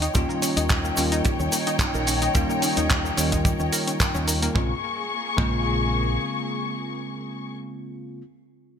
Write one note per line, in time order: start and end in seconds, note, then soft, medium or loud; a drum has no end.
0.00 4.51 D#4 medium
0.00 0.10 D#4 loud
0.00 4.51 C#5 medium
0.00 4.51 G5 loud
0.00 closed hi-hat medium
0.00 shaker soft
0.14 0.24 D#2 loud
0.14 0.94 D#3 medium
0.14 0.94 G3 medium
0.14 0.18 G3 medium
0.14 0.94 A#3 medium
0.14 0.95 C#4 medium
0.14 0.95 F4 loud
0.14 kick loud
0.14 closed hi-hat medium
0.14 shaker soft
0.29 0.35 A#3 medium
0.29 shaker soft
0.42 0.49 C#4 loud
0.42 open hi-hat loud
0.42 shaker medium
0.57 0.90 D#2 loud
0.57 0.62 D#4 loud
0.57 closed hi-hat medium
0.57 shaker soft
0.69 0.76 G3 medium
0.69 kick loud
0.69 clap loud
0.69 closed hi-hat medium
0.69 shaker soft
0.84 0.93 A#3 medium
0.84 shaker soft
0.96 1.25 D#2 medium
0.96 2.31 D#3 medium
0.96 2.32 G3 medium
0.96 2.32 A#3 medium
0.96 1.04 C#4 loud
0.96 2.32 C#4 medium
0.96 2.32 F4 medium
0.96 open hi-hat loud
0.96 shaker medium
1.12 1.18 D#4 loud
1.12 closed hi-hat medium
1.12 shaker soft
1.25 1.34 G3 loud
1.25 muted fingered electric bass stroke soft
1.25 kick loud
1.25 closed hi-hat medium
1.25 shaker soft
1.40 1.48 D#2 medium
1.40 1.45 C#4 medium
1.40 shaker soft
1.52 1.59 A#3 medium
1.52 open hi-hat loud
1.52 shaker medium
1.67 1.73 D#4 loud
1.67 closed hi-hat medium
1.67 shaker soft
1.79 1.86 G3 medium
1.79 kick loud
1.79 clap loud
1.79 closed hi-hat medium
1.79 shaker soft
1.94 2.27 A#1 loud
1.94 2.03 A#3 medium
1.94 shaker soft
2.07 2.14 C#4 loud
2.07 open hi-hat loud
2.07 shaker medium
2.22 2.30 D#4 loud
2.22 closed hi-hat medium
2.22 shaker soft
2.34 2.44 D#2 loud
2.34 3.14 D#3 medium
2.34 3.14 G3 medium
2.34 2.39 G3 medium
2.34 3.14 A#3 medium
2.34 3.15 C#4 medium
2.34 3.15 F4 loud
2.34 kick loud
2.34 closed hi-hat medium
2.34 shaker soft
2.50 2.55 A#3 medium
2.50 shaker soft
2.62 2.69 C#4 loud
2.62 open hi-hat loud
2.62 shaker medium
2.77 3.10 D#2 loud
2.77 2.83 D#4 loud
2.77 closed hi-hat medium
2.77 shaker soft
2.90 2.96 G3 medium
2.90 kick loud
2.90 clap loud
2.90 closed hi-hat medium
2.90 shaker medium
2.90 shaker soft
3.04 3.13 A#3 medium
3.04 shaker soft
3.17 3.51 D#2 medium
3.17 4.52 D#3 medium
3.17 4.52 G3 medium
3.17 4.52 A#3 medium
3.17 3.24 C#4 loud
3.17 4.52 C#4 medium
3.17 4.53 F4 loud
3.17 open hi-hat loud
3.17 shaker loud
3.17 shaker medium
3.32 3.38 D#4 loud
3.32 kick medium
3.32 closed hi-hat medium
3.32 shaker soft
3.45 3.55 G3 loud
3.45 kick loud
3.45 closed hi-hat medium
3.45 shaker medium
3.45 shaker soft
3.59 3.68 D#2 medium
3.59 3.65 C#4 medium
3.59 shaker soft
3.72 3.76 A#4 loud
3.72 open hi-hat loud
3.72 shaker medium
3.87 3.93 C#4 medium
3.87 closed hi-hat medium
3.87 shaker soft
4.00 4.06 A#3 loud
4.00 kick loud
4.00 clap loud
4.00 closed hi-hat medium
4.00 shaker medium
4.00 shaker soft
4.15 4.47 D#2 medium
4.15 4.20 C#4 loud
4.15 shaker soft
4.27 4.34 A#4 medium
4.27 open hi-hat loud
4.27 shaker medium
4.42 4.51 A#3 loud
4.42 closed hi-hat medium
4.42 shaker soft
4.54 4.71 A#1 loud
4.54 4.70 C#3 medium
4.54 4.71 G#3 medium
4.54 4.71 A#3 medium
4.54 7.51 A#3 medium
4.54 4.72 C4 medium
4.54 4.72 F4 medium
4.54 7.52 G#4 medium
4.54 7.51 C#6 medium
4.54 kick loud
5.36 6.17 A#1 loud
5.36 8.21 C#3 medium
5.36 8.21 G#3 medium
5.36 5.54 G#3 medium
5.36 8.21 A#3 medium
5.36 8.22 C4 medium
5.36 8.22 F4 loud
5.36 kick loud